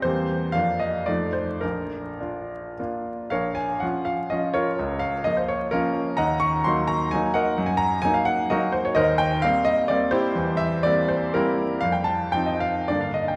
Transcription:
<<
  \new Staff \with { instrumentName = "Grand piano" } { \time 3/4 \key bes \major \tempo 4 = 124 c''4 f''8 ees''8 d''8 c''8 | bes'2 r4 | \key bes \minor <bes' des'' f''>8 aes''8 ges''8 f''8 ees''8 <f' bes' des''>8~ | <f' bes' des''>8 f''8 ees''16 c''16 des''8 <des' f' bes'>4 |
<ees'' ges'' bes''>8 des'''8 c'''8 bes''8 aes''8 <bes' ees'' ges''>8~ | <bes' ees'' ges''>16 aes''16 bes''8 aes''16 f''16 ges''8 <ges' bes' ees''>8 c''16 des''16 | \key c \dorian <bes' c'' ees''>8 g''8 f''8 ees''8 d''8 <e' g' c''>8~ | <e' g' c''>8 e''8 d''8 c''8 <e' g' bes'>4 |
f''16 g''16 a''8 g''16 ees''16 f''8 d''16 f''16 ees''16 g''16 | }
  \new Staff \with { instrumentName = "Grand piano" } { \time 3/4 \key bes \major <e, bes c' g'>4 <f, bes d' f'>4 <f, a ees' f'>4 | bes,,4 <d' f'>4 <bes d' f'>4 | \key bes \minor bes,,4 <f des' f'>4 <f des' f'>4 | des,4 <f bes f'>4 <f bes>4 |
ees,4 <ges bes ees'>4 <ges bes ees'>4 | ges,4 <ges bes ees'>4 <ges bes ees'>4 | \key c \dorian ees,4 <g bes c'>4 <g bes c'>4 | e,4 <g bes c'>4 <g bes c'>4 |
f,4 <f c' ees'>4 <g, d bes d'>4 | }
>>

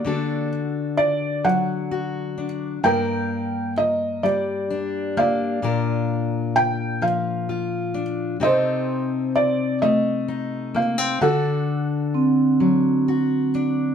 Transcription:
<<
  \new Staff \with { instrumentName = "Felt piano" } { \time 6/8 \key d \phrygian \tempo 4. = 43 << { d''8 r8 d''8 fis''4 r8 | g''4 ees''8 d''4 f''8~ | f''4 g''8 f''4 r8 | ees''4 d''8 ees''4 f''8 |
fis''2~ fis''8 r8 | } \\ { fis'4 r2 | bes'4. r4 d''8~ | d''4 r2 | c''4. r4. |
a'2~ a'8 r8 | } >> }
  \new Staff \with { instrumentName = "Steel-string acoustic guitar" } { \time 6/8 \key d \phrygian << { <d' fis' a'>2 fis'8 d'8 | <bes bes'>2 d'8 bes8 | <d' f' bes'>2 f'8 d'8 | <c' ees' a'>2 ees'8 bes16 c'16 |
<d' fis' a'>2 fis'8 d'8 | } \\ { d4. fis4. | g,4. g4. | bes,4. f4. | c4. a4. |
d4. fis4. | } >> }
  \new Staff \with { instrumentName = "Vibraphone" } { \time 6/8 \key d \phrygian bes8 r2 r8 | r2. | r2. | r2. |
r4 c'2 | }
>>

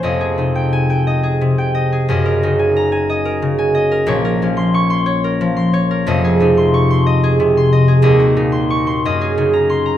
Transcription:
<<
  \new Staff \with { instrumentName = "Harp" } { \time 6/8 \key f \phrygian \tempo 4. = 60 << { r4 aes''8 r4. | r4 bes''8 r4. | r4 des'''8 r4. | r4 des'''8 r4. |
r4 des'''8 r4 c'''8 | } \\ { <f c'' ees'' aes''>16 aes'16 c16 g''8 g''16 ees''16 aes'16 c16 g''16 ees''16 aes'16 | ees''16 bes'16 des16 aes''8 aes''16 ees''16 bes'16 des16 aes''16 ees''16 bes'16 | des''16 bes'16 f16 c'''8 c'''16 des''16 bes'16 f16 c'''16 des''16 bes'16 | ees''16 aes'16 c16 c'''8 c'''16 ees''16 aes'16 c16 c'''16 ees''16 aes'16 |
ees''16 ges'16 bes,16 c'''8 c'''16 ees''16 aes'16 des16 bes''8 bes''16 | } >> }
  \new Staff \with { instrumentName = "Harp" } { \clef bass \time 6/8 \key f \phrygian <f,, f,>8 ees'2~ ees'8 | <ges,, ges,>8 ees'2~ ees'8 | <bes,, bes,>8 des'2~ des'8 | <f,, f,>8 ees'2~ ees'8 |
<ees,, ees,>8 ees'4 ges,8 ees'4 | }
>>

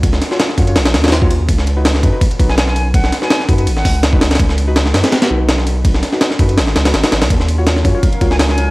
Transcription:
<<
  \new Staff \with { instrumentName = "Flute" } { \time 4/4 \key des \mixolydian \tempo 4 = 165 r1 | r2 r8. aes''16 aes''16 aes''8 r16 | ges''8 r16 aes''8 r4 ges''8. r4 | r1 |
r1 | r2 r8. aes''16 aes''16 aes''8 r16 | }
  \new Staff \with { instrumentName = "Synth stab" } { \time 4/4 \key des \mixolydian <f' ges' des''>8. <f' ges' des''>8 r16 <f' ges' des''>16 <f' ges' des''>16 r8. <f' ges' des''>16 r16 <f' ges' des''>16 r8 | r8. <ees' ges' ces''>8. <ees' ges' ces''>16 <ees' ges' ces''>16 r8 <ees' ges' ces''>4.~ | <ees' ges' ces''>8. <ees' ges' ces''>8 r16 <ees' ges' ces''>16 <ees' ges' ces''>16 r4 r16 <ees' ges' ces''>8 r16 | r8. <ees' ges' ces''>8. <ees' ges' ces''>16 <ees' ges' ces''>16 r8 <ees' ges' ces''>4.~ |
<ees' ges' ces''>8. <ees' ges' ces''>8 r16 <ees' ges' ces''>16 <ees' ges' ces''>16 r8. <ees' ges' ces''>16 r16 <ees' ges' ces''>16 r8 | r8. <f' ges' des''>8. <f' ges' des''>16 <f' ges' des''>16 r8 <f' ges' des''>4. | }
  \new Staff \with { instrumentName = "Ambient pad" } { \time 4/4 \key des \mixolydian r1 | r1 | r1 | r1 |
r1 | <ges des' ees' bes' f''>2.~ <ges des' ees' bes' f''>8 r8 | }
  \new Staff \with { instrumentName = "Sub bass" } { \clef bass \time 4/4 \key des \mixolydian des,8 r4 ges,8 bes,,8 ees,4~ ees,16 ees,16 | des,4. ges,16 r8. ces,4.~ | ces,8 r4 ges,8 aes,,8 des,4 des,8 | des,4. ges,16 r8. ces,4.~ |
ces,8 r4 ges,8 aes,,8 des,8 aes,,16 r16 aes,,16 des,16 | ees,4. ges,16 r8. des,4. | }
  \new DrumStaff \with { instrumentName = "Drums" } \drummode { \time 4/4 <bd cymr>16 sn16 <cymr sn>16 sn16 <cymr sn>16 sn16 <bd cymr>16 cymr16 <cymr sn>16 <cymr sn>16 <cymr sn>16 <cymr sn>32 <cymr sn>32 <cymr sn>16 bd16 cymr8 | <bd cymr>16 sn16 cymr8 <cymr sn>16 sn16 <bd cymr>8 <bd cymr>16 cymr16 <bd cymr>16 sn16 <cymr sn>16 sn16 cymr8 | <bd cymr>16 sn16 <cymr sn>16 sn16 <cymr sn>16 sn16 <bd cymr>16 cymr16 cymr16 sn16 <hho bd>8 <cymr sn>16 bd16 <cymr sn>16 <cymr sn>32 <cymr sn>32 | <bd cymr>16 sn16 cymr8 <cymr sn>16 sn16 <cymr sn>16 <cymr sn>16 <cymr sn>16 <cymr sn>8. <cymr sn>16 sn16 cymr8 |
<bd cymr>16 sn16 <cymr sn>16 sn16 <cymr sn>16 sn16 <bd cymr>16 cymr16 <cymr sn>16 sn16 <cymr sn>16 <cymr sn>16 <cymr sn>16 <cymr sn>16 <cymr sn>16 <cymr sn>16 | <bd cymr>16 sn16 cymr8 <cymr sn>16 sn16 <bd cymr>8 <bd cymr>16 cymr16 <bd cymr>16 sn16 <cymr sn>16 sn16 cymr8 | }
>>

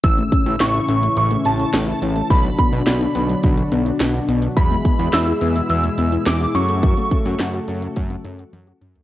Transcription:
<<
  \new Staff \with { instrumentName = "Synth bell" } { \time 4/4 \key a \major \tempo 4 = 106 e'''4 cis'''4 cis'''8 a''4. | b''8 b''4. r2 | b''4 e'''4 e'''4 d'''8 cis'''8~ | cis'''4 r2. | }
  \new Staff \with { instrumentName = "Synth pluck" } { \time 4/4 \key a \major e16 a16 cis'16 e'16 e''16 e'16 cis'16 a16 e16 a16 cis'16 e'16 r16 e'16 cis'16 a16 | d16 fis16 b16 d'16 d''16 d'16 b16 fis16 d16 fis16 b16 d'16 r16 d'16 b16 fis16 | e16 gis16 b16 e'16 e''16 e'16 b16 gis16 e16 gis16 b16 e'16 r16 e'16 cis'16 a16 | fis16 a16 cis'16 fis'16 fis''16 fis'16 cis'16 a16 fis16 a16 cis'16 fis'16 r16 fis'16 cis'16 a16 | }
  \new Staff \with { instrumentName = "Analog synth pad" } { \clef bass \time 4/4 \key a \major << { <cis e cis' e'>1 | <d fis d' fis'>1 | <e gis e' gis'>2.~ <e gis e' gis'>8 <fis a fis' a'>8~ | <fis a fis' a'>1 | } \\ { a,1 | b,1~ | b,2.~ b,8 cis8~ | cis1 | } >> }
  \new Staff \with { instrumentName = "Analog synth bass" } { \clef bass \time 4/4 \key a \major a,,8 r16 a,,16 a,,8 a,,8 a,,8 a,,8 a,,8 a,,8 | b,,8 r16 b,,16 b,,8 b,,8 b,,8 b,,8 b,,8 b,,8 | e,8 r16 e,16 e,8 e,8 e,8 e,8 e,8 fis,8~ | fis,8 r16 fis,16 fis,8 fis,8 fis,8 fis,8 fis,8 fis,8 | }
  \new DrumStaff \with { instrumentName = "Drums" } \drummode { \time 4/4 <hh bd>16 hh16 <hh bd>16 hh16 <hh sn>16 hh16 hh16 hh16 hh16 hh16 hh16 hh16 <hh sn>16 hh16 hh16 hh16 | <hh bd>16 hh16 <hh bd>16 hh16 <hh sn>16 hh16 hh16 hh16 <hh bd>16 hh16 hh16 hh16 <hh sn>16 hh16 hh16 hh16 | <hh bd>16 hh16 <hh bd>16 hh16 <hh sn>16 hh16 hh16 hh16 hh16 hh16 hh16 hh16 <hh sn>16 hh16 hh16 hh16 | <hh bd>16 hh16 <hh bd>16 hh16 <hh sn>16 hh16 hh16 hh16 <hh bd>16 hh16 hh16 hh16 <hh tommh>16 hh16 <hh toml>16 <hh tomfh>16 | }
>>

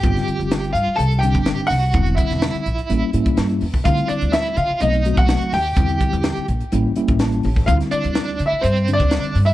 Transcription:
<<
  \new Staff \with { instrumentName = "Grand piano" } { \time 4/4 \key a \phrygian \tempo 4 = 125 g''4. f''8 a''8 g''4 fis''8~ | fis''8 e''2 r4. | f''8 d''8 e''8 f''8 dis''8. fis''8. g''8~ | g''4. r2 r8 |
f''8 d''8~ \tuplet 3/2 { d''4 e''8 c''4 d''8~ } d''8. e''16 | }
  \new Staff \with { instrumentName = "Overdriven electric guitar" } { \time 4/4 \key a \phrygian g'4. f'8 a'8 g'4 fis'8~ | fis'8 e'2 r4. | f'8 d'8 e'8 f'8 dis'8. fis'8. g'8~ | g'4. r2 r8 |
f'8 d'8~ \tuplet 3/2 { d'4 e'8 c'4 d'8~ } d'8. e'16 | }
  \new Staff \with { instrumentName = "Tine electric piano" } { \time 4/4 \key a \phrygian r1 | r1 | r1 | r2 r8 e''8 a''4 |
r1 | }
  \new Staff \with { instrumentName = "Tine electric piano" } { \time 4/4 \key a \phrygian <d g c' f'>4. r4 <d g c' d'>4 r8 | <d g c' e'>4. r8 <g bes cis' e'>8 <g bes cis' e'>4 r8 | <d g c' e'>4. r8 <fis a c' dis'>8 <fis a c' fis'>4 r8 | <d g c' e'>4. r8 <g bes cis' e'>8 <g bes cis' e'>4 r8 |
<d g c' e'>4. r4 <d g c' d'>4 r8 | }
  \new Staff \with { instrumentName = "Upright bass" } { \clef bass \time 4/4 \key a \phrygian g,,16 r8 g,,8. g,16 r16 c,8. g,,8 r16 c,8 | e,,8 r16 e,,8 r16 bes,,16 r16 a,,16 r16 a,8 g,8 e,8 | d,16 r8 d,8. d16 r16 b,,8. b,,8 r16 dis,8 | e,8 r16 e,8 r16 bes,,16 r16 a,,16 r8 a,,8. a,,8 |
d,16 r8 d,8. d16 r16 g,8. d,8 r16 g,8 | }
  \new DrumStaff \with { instrumentName = "Drums" } \drummode { \time 4/4 <hh bd>16 <hh sn>16 hh16 hh16 <hh sn>16 hh16 hh8 hh16 hh16 hh16 <hh bd>16 <hh sn>16 hh16 <hho sn>8 | <hh bd>16 hh16 <hh bd>16 <hh sn>16 <hh sn>16 hh16 hh16 hh16 hh8 hh16 <hh bd>16 <hh sn>16 hh16 hho16 bd16 | <hh bd>16 hh16 hh16 hh16 <hh sn>16 hh16 hh8 hh16 hh16 hh16 <hh bd>16 <hh sn>16 hh16 <hho sn>8 | <hh bd>16 hh16 <hh bd>16 hh16 <hh sn>16 hh16 hh16 hh16 hh8 hh16 <hh bd>16 <hh sn>16 hh16 hho16 bd16 |
<hh bd>16 <hh sn>16 hh16 hh16 <hh sn>16 hh16 hh8 hh16 hh16 hh16 <hh bd>16 <hh sn>16 hh16 hho8 | }
>>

